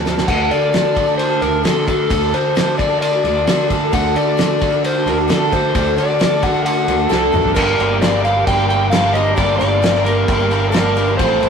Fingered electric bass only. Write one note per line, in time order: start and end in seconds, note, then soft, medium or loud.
0.00 0.24 D2 medium
0.28 0.49 D2 medium
0.50 1.43 D3 medium
1.41 1.63 D2 medium
1.64 2.07 D3 medium
2.10 2.32 D2 loud
2.34 3.26 D3 medium
3.24 3.45 D2 medium
3.48 3.90 D3 medium
3.93 4.14 D2 loud
4.15 5.07 D3 medium
5.06 5.27 D2 medium
5.30 5.72 D3 medium
5.75 5.96 D2 loud
5.97 6.89 D3 medium
6.88 7.09 D2 medium
7.10 7.31 C2 medium
7.34 7.54 A1 medium
7.57 7.78 G1 medium
7.79 8.43 G1 medium
8.47 9.34 G1 medium
9.38 9.59 G1 medium
9.61 10.25 G1 medium
10.29 11.15 G1 medium
11.19 11.40 A1 loud
11.42 11.49 A1 medium